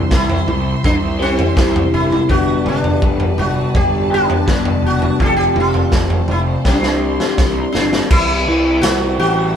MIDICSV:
0, 0, Header, 1, 6, 480
1, 0, Start_track
1, 0, Tempo, 726392
1, 1517, Time_signature, 4, 2, 24, 8
1, 6319, End_track
2, 0, Start_track
2, 0, Title_t, "String section"
2, 0, Program_c, 0, 48
2, 0, Note_on_c, 0, 55, 72
2, 0, Note_on_c, 0, 72, 69
2, 0, Note_on_c, 0, 76, 66
2, 0, Note_on_c, 0, 84, 78
2, 1498, Note_off_c, 0, 76, 0
2, 1498, Note_off_c, 0, 84, 0
2, 1500, Note_off_c, 0, 72, 0
2, 1508, Note_on_c, 0, 74, 70
2, 1511, Note_on_c, 0, 81, 86
2, 1516, Note_on_c, 0, 71, 68
2, 3414, Note_off_c, 0, 55, 0
2, 3418, Note_off_c, 0, 71, 0
2, 3440, Note_on_c, 0, 72, 70
2, 3444, Note_on_c, 0, 53, 71
2, 4368, Note_off_c, 0, 81, 0
2, 4391, Note_off_c, 0, 53, 0
2, 4413, Note_on_c, 0, 67, 69
2, 4415, Note_on_c, 0, 84, 73
2, 5326, Note_off_c, 0, 74, 0
2, 5339, Note_off_c, 0, 72, 0
2, 5355, Note_off_c, 0, 67, 0
2, 5356, Note_off_c, 0, 84, 0
2, 5376, Note_on_c, 0, 55, 74
2, 5376, Note_on_c, 0, 60, 72
2, 5377, Note_on_c, 0, 76, 66
2, 6319, Note_off_c, 0, 55, 0
2, 6319, Note_off_c, 0, 60, 0
2, 6319, Note_off_c, 0, 76, 0
2, 6319, End_track
3, 0, Start_track
3, 0, Title_t, "Sitar"
3, 0, Program_c, 1, 104
3, 0, Note_on_c, 1, 60, 92
3, 96, Note_on_c, 1, 64, 85
3, 102, Note_off_c, 1, 60, 0
3, 563, Note_on_c, 1, 62, 90
3, 580, Note_off_c, 1, 64, 0
3, 627, Note_off_c, 1, 62, 0
3, 808, Note_on_c, 1, 60, 90
3, 1256, Note_off_c, 1, 60, 0
3, 1281, Note_on_c, 1, 64, 80
3, 1502, Note_off_c, 1, 64, 0
3, 1523, Note_on_c, 1, 66, 96
3, 1743, Note_off_c, 1, 66, 0
3, 1775, Note_on_c, 1, 62, 80
3, 2239, Note_off_c, 1, 62, 0
3, 2241, Note_on_c, 1, 66, 83
3, 2483, Note_off_c, 1, 66, 0
3, 2486, Note_on_c, 1, 67, 94
3, 2729, Note_off_c, 1, 67, 0
3, 2735, Note_on_c, 1, 62, 92
3, 3212, Note_off_c, 1, 62, 0
3, 3215, Note_on_c, 1, 66, 82
3, 3446, Note_off_c, 1, 66, 0
3, 3448, Note_on_c, 1, 67, 91
3, 3475, Note_on_c, 1, 69, 83
3, 3490, Note_off_c, 1, 67, 0
3, 3525, Note_off_c, 1, 69, 0
3, 3545, Note_on_c, 1, 67, 97
3, 3689, Note_off_c, 1, 67, 0
3, 3700, Note_on_c, 1, 65, 80
3, 4142, Note_off_c, 1, 65, 0
3, 4170, Note_on_c, 1, 64, 77
3, 4233, Note_off_c, 1, 64, 0
3, 4410, Note_on_c, 1, 62, 70
3, 5096, Note_off_c, 1, 62, 0
3, 5104, Note_on_c, 1, 62, 81
3, 5358, Note_off_c, 1, 62, 0
3, 5358, Note_on_c, 1, 64, 100
3, 5823, Note_off_c, 1, 64, 0
3, 5826, Note_on_c, 1, 66, 89
3, 6068, Note_off_c, 1, 66, 0
3, 6076, Note_on_c, 1, 66, 93
3, 6319, Note_off_c, 1, 66, 0
3, 6319, End_track
4, 0, Start_track
4, 0, Title_t, "Clean electric guitar"
4, 0, Program_c, 2, 27
4, 0, Note_on_c, 2, 48, 84
4, 0, Note_on_c, 2, 55, 84
4, 0, Note_on_c, 2, 60, 79
4, 0, Note_on_c, 2, 64, 83
4, 0, Note_on_c, 2, 67, 87
4, 0, Note_on_c, 2, 72, 88
4, 775, Note_off_c, 2, 48, 0
4, 777, Note_off_c, 2, 55, 0
4, 779, Note_off_c, 2, 60, 0
4, 780, Note_off_c, 2, 67, 0
4, 780, Note_off_c, 2, 72, 0
4, 782, Note_off_c, 2, 64, 0
4, 788, Note_on_c, 2, 67, 75
4, 788, Note_on_c, 2, 72, 84
4, 791, Note_on_c, 2, 64, 67
4, 796, Note_on_c, 2, 55, 73
4, 796, Note_on_c, 2, 60, 67
4, 800, Note_on_c, 2, 48, 58
4, 1017, Note_off_c, 2, 72, 0
4, 1018, Note_off_c, 2, 67, 0
4, 1019, Note_off_c, 2, 48, 0
4, 1019, Note_off_c, 2, 64, 0
4, 1021, Note_off_c, 2, 55, 0
4, 1022, Note_off_c, 2, 60, 0
4, 1027, Note_on_c, 2, 48, 68
4, 1030, Note_on_c, 2, 55, 78
4, 1034, Note_on_c, 2, 60, 69
4, 1037, Note_on_c, 2, 64, 77
4, 1038, Note_on_c, 2, 67, 79
4, 1045, Note_on_c, 2, 72, 88
4, 1498, Note_off_c, 2, 48, 0
4, 1499, Note_off_c, 2, 55, 0
4, 1501, Note_off_c, 2, 60, 0
4, 1503, Note_off_c, 2, 64, 0
4, 1503, Note_off_c, 2, 67, 0
4, 1506, Note_off_c, 2, 72, 0
4, 1507, Note_on_c, 2, 43, 80
4, 1512, Note_on_c, 2, 50, 83
4, 1517, Note_on_c, 2, 55, 83
4, 1522, Note_on_c, 2, 59, 85
4, 1523, Note_on_c, 2, 62, 100
4, 1524, Note_on_c, 2, 67, 96
4, 2698, Note_off_c, 2, 43, 0
4, 2701, Note_off_c, 2, 50, 0
4, 2703, Note_off_c, 2, 55, 0
4, 2703, Note_off_c, 2, 67, 0
4, 2705, Note_off_c, 2, 59, 0
4, 2706, Note_off_c, 2, 62, 0
4, 2711, Note_on_c, 2, 67, 88
4, 2716, Note_on_c, 2, 62, 87
4, 2717, Note_on_c, 2, 59, 75
4, 2722, Note_on_c, 2, 50, 71
4, 2723, Note_on_c, 2, 55, 70
4, 2728, Note_on_c, 2, 43, 56
4, 2939, Note_off_c, 2, 43, 0
4, 2940, Note_off_c, 2, 67, 0
4, 2942, Note_off_c, 2, 62, 0
4, 2943, Note_off_c, 2, 59, 0
4, 2945, Note_off_c, 2, 50, 0
4, 2946, Note_off_c, 2, 55, 0
4, 2947, Note_on_c, 2, 43, 78
4, 2954, Note_on_c, 2, 50, 68
4, 2955, Note_on_c, 2, 55, 76
4, 2958, Note_on_c, 2, 59, 84
4, 2962, Note_on_c, 2, 62, 82
4, 2965, Note_on_c, 2, 67, 73
4, 3418, Note_off_c, 2, 43, 0
4, 3421, Note_off_c, 2, 50, 0
4, 3422, Note_off_c, 2, 55, 0
4, 3423, Note_off_c, 2, 59, 0
4, 3425, Note_off_c, 2, 62, 0
4, 3427, Note_off_c, 2, 67, 0
4, 3429, Note_on_c, 2, 41, 81
4, 3433, Note_on_c, 2, 48, 89
4, 3437, Note_on_c, 2, 53, 89
4, 3439, Note_on_c, 2, 57, 84
4, 3441, Note_on_c, 2, 60, 88
4, 3443, Note_on_c, 2, 65, 85
4, 4379, Note_off_c, 2, 41, 0
4, 4381, Note_off_c, 2, 48, 0
4, 4383, Note_off_c, 2, 53, 0
4, 4384, Note_off_c, 2, 57, 0
4, 4385, Note_off_c, 2, 60, 0
4, 4385, Note_off_c, 2, 65, 0
4, 4395, Note_on_c, 2, 48, 68
4, 4398, Note_on_c, 2, 55, 78
4, 4403, Note_on_c, 2, 60, 82
4, 4406, Note_on_c, 2, 67, 81
4, 4412, Note_on_c, 2, 72, 92
4, 5341, Note_off_c, 2, 48, 0
4, 5342, Note_off_c, 2, 55, 0
4, 5345, Note_off_c, 2, 60, 0
4, 5346, Note_off_c, 2, 67, 0
4, 5350, Note_off_c, 2, 72, 0
4, 5361, Note_on_c, 2, 48, 66
4, 5603, Note_on_c, 2, 64, 64
4, 5841, Note_on_c, 2, 72, 73
4, 6078, Note_on_c, 2, 67, 70
4, 6316, Note_off_c, 2, 64, 0
4, 6319, Note_off_c, 2, 48, 0
4, 6319, Note_off_c, 2, 67, 0
4, 6319, Note_off_c, 2, 72, 0
4, 6319, End_track
5, 0, Start_track
5, 0, Title_t, "Picked electric bass"
5, 0, Program_c, 3, 34
5, 73, Note_on_c, 3, 36, 80
5, 246, Note_off_c, 3, 36, 0
5, 313, Note_on_c, 3, 36, 78
5, 486, Note_off_c, 3, 36, 0
5, 559, Note_on_c, 3, 36, 76
5, 902, Note_off_c, 3, 36, 0
5, 1035, Note_on_c, 3, 36, 77
5, 1208, Note_off_c, 3, 36, 0
5, 1275, Note_on_c, 3, 31, 82
5, 1448, Note_off_c, 3, 31, 0
5, 1517, Note_on_c, 3, 31, 88
5, 1689, Note_off_c, 3, 31, 0
5, 1753, Note_on_c, 3, 31, 85
5, 1926, Note_off_c, 3, 31, 0
5, 1997, Note_on_c, 3, 31, 89
5, 2169, Note_off_c, 3, 31, 0
5, 2233, Note_on_c, 3, 31, 79
5, 2407, Note_off_c, 3, 31, 0
5, 2474, Note_on_c, 3, 31, 77
5, 2820, Note_off_c, 3, 31, 0
5, 2957, Note_on_c, 3, 31, 73
5, 3130, Note_off_c, 3, 31, 0
5, 3187, Note_on_c, 3, 28, 76
5, 3363, Note_off_c, 3, 28, 0
5, 3437, Note_on_c, 3, 29, 83
5, 3610, Note_off_c, 3, 29, 0
5, 3672, Note_on_c, 3, 29, 80
5, 3846, Note_off_c, 3, 29, 0
5, 3914, Note_on_c, 3, 29, 85
5, 4088, Note_off_c, 3, 29, 0
5, 4153, Note_on_c, 3, 29, 73
5, 4327, Note_off_c, 3, 29, 0
5, 4396, Note_on_c, 3, 36, 84
5, 4740, Note_off_c, 3, 36, 0
5, 4876, Note_on_c, 3, 36, 78
5, 5048, Note_off_c, 3, 36, 0
5, 5119, Note_on_c, 3, 31, 76
5, 5290, Note_off_c, 3, 31, 0
5, 5356, Note_on_c, 3, 36, 92
5, 5584, Note_off_c, 3, 36, 0
5, 5598, Note_on_c, 3, 36, 88
5, 5825, Note_off_c, 3, 36, 0
5, 5832, Note_on_c, 3, 36, 81
5, 6061, Note_off_c, 3, 36, 0
5, 6076, Note_on_c, 3, 33, 84
5, 6303, Note_off_c, 3, 33, 0
5, 6319, End_track
6, 0, Start_track
6, 0, Title_t, "Drums"
6, 72, Note_on_c, 9, 38, 70
6, 75, Note_on_c, 9, 36, 99
6, 139, Note_off_c, 9, 38, 0
6, 141, Note_off_c, 9, 36, 0
6, 195, Note_on_c, 9, 43, 77
6, 261, Note_off_c, 9, 43, 0
6, 316, Note_on_c, 9, 47, 76
6, 382, Note_off_c, 9, 47, 0
6, 558, Note_on_c, 9, 36, 100
6, 558, Note_on_c, 9, 43, 74
6, 624, Note_off_c, 9, 36, 0
6, 624, Note_off_c, 9, 43, 0
6, 917, Note_on_c, 9, 43, 81
6, 983, Note_off_c, 9, 43, 0
6, 1037, Note_on_c, 9, 36, 100
6, 1038, Note_on_c, 9, 38, 77
6, 1103, Note_off_c, 9, 36, 0
6, 1105, Note_off_c, 9, 38, 0
6, 1162, Note_on_c, 9, 43, 87
6, 1162, Note_on_c, 9, 47, 77
6, 1229, Note_off_c, 9, 43, 0
6, 1229, Note_off_c, 9, 47, 0
6, 1404, Note_on_c, 9, 47, 72
6, 1470, Note_off_c, 9, 47, 0
6, 1515, Note_on_c, 9, 43, 78
6, 1518, Note_on_c, 9, 36, 94
6, 1581, Note_off_c, 9, 43, 0
6, 1584, Note_off_c, 9, 36, 0
6, 1757, Note_on_c, 9, 47, 72
6, 1823, Note_off_c, 9, 47, 0
6, 1877, Note_on_c, 9, 43, 72
6, 1944, Note_off_c, 9, 43, 0
6, 1997, Note_on_c, 9, 36, 99
6, 2063, Note_off_c, 9, 36, 0
6, 2113, Note_on_c, 9, 43, 77
6, 2179, Note_off_c, 9, 43, 0
6, 2234, Note_on_c, 9, 47, 69
6, 2300, Note_off_c, 9, 47, 0
6, 2476, Note_on_c, 9, 43, 78
6, 2477, Note_on_c, 9, 36, 105
6, 2542, Note_off_c, 9, 43, 0
6, 2543, Note_off_c, 9, 36, 0
6, 2840, Note_on_c, 9, 43, 77
6, 2906, Note_off_c, 9, 43, 0
6, 2958, Note_on_c, 9, 36, 100
6, 2960, Note_on_c, 9, 38, 82
6, 3025, Note_off_c, 9, 36, 0
6, 3026, Note_off_c, 9, 38, 0
6, 3076, Note_on_c, 9, 43, 83
6, 3076, Note_on_c, 9, 47, 71
6, 3142, Note_off_c, 9, 43, 0
6, 3142, Note_off_c, 9, 47, 0
6, 3317, Note_on_c, 9, 47, 79
6, 3383, Note_off_c, 9, 47, 0
6, 3436, Note_on_c, 9, 43, 73
6, 3437, Note_on_c, 9, 36, 92
6, 3502, Note_off_c, 9, 43, 0
6, 3504, Note_off_c, 9, 36, 0
6, 3674, Note_on_c, 9, 47, 76
6, 3740, Note_off_c, 9, 47, 0
6, 3794, Note_on_c, 9, 43, 81
6, 3860, Note_off_c, 9, 43, 0
6, 3911, Note_on_c, 9, 38, 72
6, 3915, Note_on_c, 9, 36, 93
6, 3977, Note_off_c, 9, 38, 0
6, 3981, Note_off_c, 9, 36, 0
6, 4032, Note_on_c, 9, 43, 75
6, 4098, Note_off_c, 9, 43, 0
6, 4149, Note_on_c, 9, 47, 72
6, 4216, Note_off_c, 9, 47, 0
6, 4393, Note_on_c, 9, 38, 54
6, 4395, Note_on_c, 9, 36, 91
6, 4459, Note_off_c, 9, 38, 0
6, 4461, Note_off_c, 9, 36, 0
6, 4514, Note_on_c, 9, 38, 52
6, 4580, Note_off_c, 9, 38, 0
6, 4759, Note_on_c, 9, 38, 59
6, 4825, Note_off_c, 9, 38, 0
6, 4877, Note_on_c, 9, 38, 75
6, 4879, Note_on_c, 9, 36, 113
6, 4943, Note_off_c, 9, 38, 0
6, 4945, Note_off_c, 9, 36, 0
6, 5122, Note_on_c, 9, 38, 77
6, 5188, Note_off_c, 9, 38, 0
6, 5239, Note_on_c, 9, 38, 78
6, 5306, Note_off_c, 9, 38, 0
6, 5356, Note_on_c, 9, 49, 104
6, 5358, Note_on_c, 9, 36, 109
6, 5422, Note_off_c, 9, 49, 0
6, 5424, Note_off_c, 9, 36, 0
6, 5836, Note_on_c, 9, 42, 69
6, 5838, Note_on_c, 9, 38, 103
6, 5902, Note_off_c, 9, 42, 0
6, 5904, Note_off_c, 9, 38, 0
6, 6319, End_track
0, 0, End_of_file